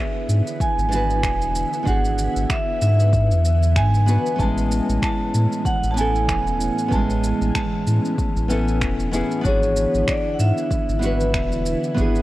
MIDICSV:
0, 0, Header, 1, 6, 480
1, 0, Start_track
1, 0, Key_signature, 3, "major"
1, 0, Tempo, 631579
1, 1418, Time_signature, 4, 2, 24, 8
1, 9287, End_track
2, 0, Start_track
2, 0, Title_t, "Vibraphone"
2, 0, Program_c, 0, 11
2, 0, Note_on_c, 0, 76, 91
2, 463, Note_on_c, 0, 80, 102
2, 488, Note_off_c, 0, 76, 0
2, 1422, Note_on_c, 0, 78, 94
2, 1449, Note_off_c, 0, 80, 0
2, 1903, Note_on_c, 0, 76, 93
2, 1915, Note_off_c, 0, 78, 0
2, 2134, Note_off_c, 0, 76, 0
2, 2143, Note_on_c, 0, 76, 99
2, 2861, Note_on_c, 0, 80, 104
2, 2882, Note_off_c, 0, 76, 0
2, 3341, Note_on_c, 0, 81, 106
2, 3354, Note_off_c, 0, 80, 0
2, 3814, Note_off_c, 0, 81, 0
2, 3823, Note_on_c, 0, 81, 109
2, 4300, Note_on_c, 0, 78, 99
2, 4315, Note_off_c, 0, 81, 0
2, 4480, Note_off_c, 0, 78, 0
2, 4492, Note_on_c, 0, 81, 80
2, 4538, Note_off_c, 0, 81, 0
2, 4540, Note_on_c, 0, 80, 113
2, 5262, Note_on_c, 0, 81, 109
2, 5281, Note_off_c, 0, 80, 0
2, 5730, Note_off_c, 0, 81, 0
2, 5739, Note_on_c, 0, 81, 90
2, 6668, Note_off_c, 0, 81, 0
2, 7183, Note_on_c, 0, 73, 96
2, 7664, Note_on_c, 0, 74, 100
2, 7675, Note_off_c, 0, 73, 0
2, 7856, Note_on_c, 0, 78, 81
2, 7861, Note_off_c, 0, 74, 0
2, 7900, Note_off_c, 0, 78, 0
2, 7904, Note_on_c, 0, 76, 107
2, 9287, Note_off_c, 0, 76, 0
2, 9287, End_track
3, 0, Start_track
3, 0, Title_t, "Nylon-string guitar"
3, 0, Program_c, 1, 24
3, 0, Note_on_c, 1, 62, 76
3, 0, Note_on_c, 1, 66, 77
3, 0, Note_on_c, 1, 68, 94
3, 668, Note_off_c, 1, 62, 0
3, 672, Note_off_c, 1, 66, 0
3, 675, Note_on_c, 1, 59, 84
3, 685, Note_off_c, 1, 68, 0
3, 693, Note_on_c, 1, 62, 81
3, 706, Note_off_c, 1, 59, 0
3, 709, Note_on_c, 1, 66, 80
3, 724, Note_on_c, 1, 71, 94
3, 1388, Note_off_c, 1, 66, 0
3, 1391, Note_off_c, 1, 62, 0
3, 1391, Note_on_c, 1, 59, 88
3, 1406, Note_off_c, 1, 71, 0
3, 1409, Note_on_c, 1, 62, 76
3, 1422, Note_off_c, 1, 59, 0
3, 1425, Note_on_c, 1, 66, 76
3, 1442, Note_on_c, 1, 68, 93
3, 2589, Note_off_c, 1, 62, 0
3, 2597, Note_off_c, 1, 66, 0
3, 2605, Note_off_c, 1, 68, 0
3, 3087, Note_on_c, 1, 59, 78
3, 3094, Note_on_c, 1, 62, 64
3, 3104, Note_on_c, 1, 66, 68
3, 3112, Note_on_c, 1, 71, 80
3, 3302, Note_off_c, 1, 59, 0
3, 3308, Note_off_c, 1, 66, 0
3, 3311, Note_off_c, 1, 62, 0
3, 3311, Note_on_c, 1, 59, 87
3, 3320, Note_off_c, 1, 71, 0
3, 3328, Note_on_c, 1, 61, 80
3, 3344, Note_on_c, 1, 64, 80
3, 3362, Note_on_c, 1, 56, 98
3, 4500, Note_off_c, 1, 59, 0
3, 4508, Note_off_c, 1, 61, 0
3, 4511, Note_off_c, 1, 56, 0
3, 4514, Note_on_c, 1, 59, 85
3, 4516, Note_off_c, 1, 64, 0
3, 4531, Note_on_c, 1, 61, 78
3, 4548, Note_on_c, 1, 64, 78
3, 4565, Note_on_c, 1, 69, 95
3, 5222, Note_off_c, 1, 59, 0
3, 5229, Note_off_c, 1, 64, 0
3, 5230, Note_off_c, 1, 61, 0
3, 5232, Note_on_c, 1, 59, 80
3, 5247, Note_off_c, 1, 69, 0
3, 5249, Note_on_c, 1, 61, 75
3, 5266, Note_on_c, 1, 64, 75
3, 5283, Note_on_c, 1, 56, 98
3, 6420, Note_off_c, 1, 59, 0
3, 6429, Note_off_c, 1, 61, 0
3, 6437, Note_off_c, 1, 64, 0
3, 6446, Note_off_c, 1, 56, 0
3, 6446, Note_on_c, 1, 59, 89
3, 6454, Note_on_c, 1, 61, 82
3, 6462, Note_on_c, 1, 64, 81
3, 6471, Note_on_c, 1, 69, 94
3, 6907, Note_off_c, 1, 59, 0
3, 6911, Note_off_c, 1, 61, 0
3, 6915, Note_off_c, 1, 64, 0
3, 6920, Note_off_c, 1, 69, 0
3, 6927, Note_on_c, 1, 59, 96
3, 6935, Note_on_c, 1, 61, 86
3, 6945, Note_on_c, 1, 64, 94
3, 6952, Note_on_c, 1, 68, 105
3, 7144, Note_off_c, 1, 59, 0
3, 7152, Note_off_c, 1, 61, 0
3, 7153, Note_on_c, 1, 59, 89
3, 7157, Note_off_c, 1, 64, 0
3, 7160, Note_off_c, 1, 68, 0
3, 7169, Note_on_c, 1, 62, 80
3, 7187, Note_on_c, 1, 66, 83
3, 7204, Note_on_c, 1, 68, 100
3, 8341, Note_off_c, 1, 59, 0
3, 8349, Note_off_c, 1, 62, 0
3, 8353, Note_on_c, 1, 59, 81
3, 8358, Note_off_c, 1, 66, 0
3, 8366, Note_off_c, 1, 68, 0
3, 8369, Note_on_c, 1, 62, 72
3, 8386, Note_on_c, 1, 66, 75
3, 8402, Note_on_c, 1, 71, 92
3, 9061, Note_off_c, 1, 59, 0
3, 9069, Note_off_c, 1, 62, 0
3, 9077, Note_off_c, 1, 66, 0
3, 9077, Note_on_c, 1, 59, 87
3, 9085, Note_off_c, 1, 71, 0
3, 9094, Note_on_c, 1, 62, 77
3, 9111, Note_on_c, 1, 66, 76
3, 9127, Note_on_c, 1, 68, 95
3, 9287, Note_off_c, 1, 59, 0
3, 9287, Note_off_c, 1, 62, 0
3, 9287, Note_off_c, 1, 66, 0
3, 9287, Note_off_c, 1, 68, 0
3, 9287, End_track
4, 0, Start_track
4, 0, Title_t, "String machine"
4, 0, Program_c, 2, 50
4, 0, Note_on_c, 2, 50, 77
4, 0, Note_on_c, 2, 52, 68
4, 0, Note_on_c, 2, 59, 70
4, 0, Note_on_c, 2, 64, 85
4, 3310, Note_off_c, 2, 50, 0
4, 3310, Note_off_c, 2, 64, 0
4, 3337, Note_on_c, 2, 45, 77
4, 3337, Note_on_c, 2, 61, 87
4, 7147, Note_off_c, 2, 45, 0
4, 7148, Note_off_c, 2, 61, 0
4, 7149, Note_off_c, 2, 59, 0
4, 7179, Note_on_c, 2, 64, 91
4, 7180, Note_on_c, 2, 50, 82
4, 7180, Note_on_c, 2, 59, 68
4, 9080, Note_off_c, 2, 59, 0
4, 9099, Note_on_c, 2, 73, 74
4, 9287, Note_off_c, 2, 50, 0
4, 9287, Note_off_c, 2, 52, 0
4, 9287, Note_off_c, 2, 64, 0
4, 9287, Note_off_c, 2, 73, 0
4, 9287, End_track
5, 0, Start_track
5, 0, Title_t, "Sub bass"
5, 0, Program_c, 3, 38
5, 216, Note_on_c, 3, 44, 76
5, 317, Note_off_c, 3, 44, 0
5, 592, Note_on_c, 3, 32, 92
5, 937, Note_on_c, 3, 28, 92
5, 948, Note_off_c, 3, 32, 0
5, 1255, Note_off_c, 3, 28, 0
5, 1418, Note_on_c, 3, 32, 108
5, 1736, Note_off_c, 3, 32, 0
5, 1793, Note_on_c, 3, 32, 101
5, 1870, Note_off_c, 3, 32, 0
5, 2139, Note_on_c, 3, 44, 81
5, 2512, Note_on_c, 3, 40, 92
5, 2523, Note_off_c, 3, 44, 0
5, 2857, Note_on_c, 3, 44, 95
5, 2868, Note_off_c, 3, 40, 0
5, 3175, Note_off_c, 3, 44, 0
5, 3336, Note_on_c, 3, 33, 102
5, 3655, Note_off_c, 3, 33, 0
5, 3715, Note_on_c, 3, 33, 106
5, 3791, Note_off_c, 3, 33, 0
5, 4058, Note_on_c, 3, 45, 75
5, 4158, Note_off_c, 3, 45, 0
5, 4433, Note_on_c, 3, 33, 92
5, 4777, Note_on_c, 3, 28, 92
5, 4788, Note_off_c, 3, 33, 0
5, 5095, Note_off_c, 3, 28, 0
5, 5257, Note_on_c, 3, 33, 104
5, 5576, Note_off_c, 3, 33, 0
5, 5633, Note_on_c, 3, 33, 97
5, 5710, Note_off_c, 3, 33, 0
5, 5978, Note_on_c, 3, 45, 81
5, 6078, Note_off_c, 3, 45, 0
5, 6353, Note_on_c, 3, 33, 98
5, 6699, Note_on_c, 3, 28, 98
5, 6710, Note_off_c, 3, 33, 0
5, 7016, Note_off_c, 3, 28, 0
5, 7178, Note_on_c, 3, 32, 104
5, 7496, Note_off_c, 3, 32, 0
5, 7556, Note_on_c, 3, 32, 97
5, 7631, Note_off_c, 3, 32, 0
5, 7897, Note_on_c, 3, 44, 83
5, 7997, Note_off_c, 3, 44, 0
5, 8274, Note_on_c, 3, 32, 95
5, 8618, Note_on_c, 3, 28, 94
5, 8630, Note_off_c, 3, 32, 0
5, 8936, Note_off_c, 3, 28, 0
5, 9099, Note_on_c, 3, 32, 104
5, 9287, Note_off_c, 3, 32, 0
5, 9287, End_track
6, 0, Start_track
6, 0, Title_t, "Drums"
6, 223, Note_on_c, 9, 82, 76
6, 299, Note_off_c, 9, 82, 0
6, 359, Note_on_c, 9, 82, 33
6, 435, Note_off_c, 9, 82, 0
6, 458, Note_on_c, 9, 36, 112
6, 464, Note_on_c, 9, 82, 46
6, 534, Note_off_c, 9, 36, 0
6, 540, Note_off_c, 9, 82, 0
6, 599, Note_on_c, 9, 82, 33
6, 675, Note_off_c, 9, 82, 0
6, 703, Note_on_c, 9, 82, 79
6, 779, Note_off_c, 9, 82, 0
6, 839, Note_on_c, 9, 82, 31
6, 915, Note_off_c, 9, 82, 0
6, 937, Note_on_c, 9, 36, 104
6, 939, Note_on_c, 9, 26, 99
6, 942, Note_on_c, 9, 82, 47
6, 1013, Note_off_c, 9, 36, 0
6, 1015, Note_off_c, 9, 26, 0
6, 1018, Note_off_c, 9, 82, 0
6, 1077, Note_on_c, 9, 82, 34
6, 1153, Note_off_c, 9, 82, 0
6, 1182, Note_on_c, 9, 82, 84
6, 1258, Note_off_c, 9, 82, 0
6, 1318, Note_on_c, 9, 82, 35
6, 1394, Note_off_c, 9, 82, 0
6, 1418, Note_on_c, 9, 36, 106
6, 1421, Note_on_c, 9, 82, 42
6, 1494, Note_off_c, 9, 36, 0
6, 1497, Note_off_c, 9, 82, 0
6, 1557, Note_on_c, 9, 82, 33
6, 1633, Note_off_c, 9, 82, 0
6, 1661, Note_on_c, 9, 82, 83
6, 1737, Note_off_c, 9, 82, 0
6, 1797, Note_on_c, 9, 82, 37
6, 1873, Note_off_c, 9, 82, 0
6, 1898, Note_on_c, 9, 36, 113
6, 1899, Note_on_c, 9, 26, 97
6, 1902, Note_on_c, 9, 82, 46
6, 1974, Note_off_c, 9, 36, 0
6, 1975, Note_off_c, 9, 26, 0
6, 1978, Note_off_c, 9, 82, 0
6, 2141, Note_on_c, 9, 82, 75
6, 2217, Note_off_c, 9, 82, 0
6, 2278, Note_on_c, 9, 82, 33
6, 2354, Note_off_c, 9, 82, 0
6, 2377, Note_on_c, 9, 36, 111
6, 2380, Note_on_c, 9, 82, 45
6, 2453, Note_off_c, 9, 36, 0
6, 2456, Note_off_c, 9, 82, 0
6, 2516, Note_on_c, 9, 82, 32
6, 2592, Note_off_c, 9, 82, 0
6, 2621, Note_on_c, 9, 82, 80
6, 2697, Note_off_c, 9, 82, 0
6, 2757, Note_on_c, 9, 82, 33
6, 2833, Note_off_c, 9, 82, 0
6, 2857, Note_on_c, 9, 36, 99
6, 2858, Note_on_c, 9, 26, 93
6, 2861, Note_on_c, 9, 82, 42
6, 2933, Note_off_c, 9, 36, 0
6, 2934, Note_off_c, 9, 26, 0
6, 2937, Note_off_c, 9, 82, 0
6, 2997, Note_on_c, 9, 82, 30
6, 3073, Note_off_c, 9, 82, 0
6, 3100, Note_on_c, 9, 82, 82
6, 3176, Note_off_c, 9, 82, 0
6, 3237, Note_on_c, 9, 82, 34
6, 3313, Note_off_c, 9, 82, 0
6, 3337, Note_on_c, 9, 36, 101
6, 3341, Note_on_c, 9, 82, 45
6, 3413, Note_off_c, 9, 36, 0
6, 3417, Note_off_c, 9, 82, 0
6, 3479, Note_on_c, 9, 82, 33
6, 3555, Note_off_c, 9, 82, 0
6, 3584, Note_on_c, 9, 82, 83
6, 3660, Note_off_c, 9, 82, 0
6, 3720, Note_on_c, 9, 82, 34
6, 3796, Note_off_c, 9, 82, 0
6, 3816, Note_on_c, 9, 36, 110
6, 3820, Note_on_c, 9, 26, 96
6, 3823, Note_on_c, 9, 82, 45
6, 3892, Note_off_c, 9, 36, 0
6, 3896, Note_off_c, 9, 26, 0
6, 3899, Note_off_c, 9, 82, 0
6, 4062, Note_on_c, 9, 82, 80
6, 4138, Note_off_c, 9, 82, 0
6, 4198, Note_on_c, 9, 82, 33
6, 4274, Note_off_c, 9, 82, 0
6, 4296, Note_on_c, 9, 36, 104
6, 4302, Note_on_c, 9, 82, 43
6, 4372, Note_off_c, 9, 36, 0
6, 4378, Note_off_c, 9, 82, 0
6, 4437, Note_on_c, 9, 82, 33
6, 4513, Note_off_c, 9, 82, 0
6, 4542, Note_on_c, 9, 82, 79
6, 4618, Note_off_c, 9, 82, 0
6, 4679, Note_on_c, 9, 82, 31
6, 4755, Note_off_c, 9, 82, 0
6, 4777, Note_on_c, 9, 36, 92
6, 4779, Note_on_c, 9, 26, 96
6, 4782, Note_on_c, 9, 82, 44
6, 4853, Note_off_c, 9, 36, 0
6, 4855, Note_off_c, 9, 26, 0
6, 4858, Note_off_c, 9, 82, 0
6, 4918, Note_on_c, 9, 82, 30
6, 4994, Note_off_c, 9, 82, 0
6, 5022, Note_on_c, 9, 82, 79
6, 5098, Note_off_c, 9, 82, 0
6, 5157, Note_on_c, 9, 82, 33
6, 5233, Note_off_c, 9, 82, 0
6, 5257, Note_on_c, 9, 36, 98
6, 5260, Note_on_c, 9, 82, 41
6, 5333, Note_off_c, 9, 36, 0
6, 5336, Note_off_c, 9, 82, 0
6, 5397, Note_on_c, 9, 82, 31
6, 5473, Note_off_c, 9, 82, 0
6, 5502, Note_on_c, 9, 82, 71
6, 5578, Note_off_c, 9, 82, 0
6, 5638, Note_on_c, 9, 82, 32
6, 5714, Note_off_c, 9, 82, 0
6, 5738, Note_on_c, 9, 36, 102
6, 5739, Note_on_c, 9, 26, 100
6, 5742, Note_on_c, 9, 82, 43
6, 5814, Note_off_c, 9, 36, 0
6, 5815, Note_off_c, 9, 26, 0
6, 5818, Note_off_c, 9, 82, 0
6, 5983, Note_on_c, 9, 82, 74
6, 6059, Note_off_c, 9, 82, 0
6, 6118, Note_on_c, 9, 82, 32
6, 6194, Note_off_c, 9, 82, 0
6, 6218, Note_on_c, 9, 36, 106
6, 6222, Note_on_c, 9, 82, 45
6, 6294, Note_off_c, 9, 36, 0
6, 6298, Note_off_c, 9, 82, 0
6, 6358, Note_on_c, 9, 82, 29
6, 6434, Note_off_c, 9, 82, 0
6, 6461, Note_on_c, 9, 82, 73
6, 6537, Note_off_c, 9, 82, 0
6, 6597, Note_on_c, 9, 82, 32
6, 6673, Note_off_c, 9, 82, 0
6, 6698, Note_on_c, 9, 26, 92
6, 6698, Note_on_c, 9, 36, 101
6, 6701, Note_on_c, 9, 82, 42
6, 6774, Note_off_c, 9, 26, 0
6, 6774, Note_off_c, 9, 36, 0
6, 6777, Note_off_c, 9, 82, 0
6, 6838, Note_on_c, 9, 82, 32
6, 6914, Note_off_c, 9, 82, 0
6, 6941, Note_on_c, 9, 82, 77
6, 7017, Note_off_c, 9, 82, 0
6, 7078, Note_on_c, 9, 82, 33
6, 7154, Note_off_c, 9, 82, 0
6, 7178, Note_on_c, 9, 36, 99
6, 7181, Note_on_c, 9, 82, 43
6, 7254, Note_off_c, 9, 36, 0
6, 7257, Note_off_c, 9, 82, 0
6, 7318, Note_on_c, 9, 82, 30
6, 7394, Note_off_c, 9, 82, 0
6, 7421, Note_on_c, 9, 82, 77
6, 7497, Note_off_c, 9, 82, 0
6, 7558, Note_on_c, 9, 82, 30
6, 7634, Note_off_c, 9, 82, 0
6, 7658, Note_on_c, 9, 26, 106
6, 7658, Note_on_c, 9, 36, 101
6, 7661, Note_on_c, 9, 82, 42
6, 7734, Note_off_c, 9, 26, 0
6, 7734, Note_off_c, 9, 36, 0
6, 7737, Note_off_c, 9, 82, 0
6, 7901, Note_on_c, 9, 82, 67
6, 7977, Note_off_c, 9, 82, 0
6, 8037, Note_on_c, 9, 82, 31
6, 8113, Note_off_c, 9, 82, 0
6, 8138, Note_on_c, 9, 36, 103
6, 8142, Note_on_c, 9, 82, 40
6, 8214, Note_off_c, 9, 36, 0
6, 8218, Note_off_c, 9, 82, 0
6, 8278, Note_on_c, 9, 82, 29
6, 8354, Note_off_c, 9, 82, 0
6, 8381, Note_on_c, 9, 82, 73
6, 8457, Note_off_c, 9, 82, 0
6, 8516, Note_on_c, 9, 82, 30
6, 8592, Note_off_c, 9, 82, 0
6, 8618, Note_on_c, 9, 26, 99
6, 8618, Note_on_c, 9, 36, 99
6, 8621, Note_on_c, 9, 82, 42
6, 8694, Note_off_c, 9, 26, 0
6, 8694, Note_off_c, 9, 36, 0
6, 8697, Note_off_c, 9, 82, 0
6, 8756, Note_on_c, 9, 82, 30
6, 8832, Note_off_c, 9, 82, 0
6, 8860, Note_on_c, 9, 82, 77
6, 8936, Note_off_c, 9, 82, 0
6, 8996, Note_on_c, 9, 82, 32
6, 9072, Note_off_c, 9, 82, 0
6, 9098, Note_on_c, 9, 36, 104
6, 9100, Note_on_c, 9, 82, 41
6, 9174, Note_off_c, 9, 36, 0
6, 9176, Note_off_c, 9, 82, 0
6, 9237, Note_on_c, 9, 82, 31
6, 9287, Note_off_c, 9, 82, 0
6, 9287, End_track
0, 0, End_of_file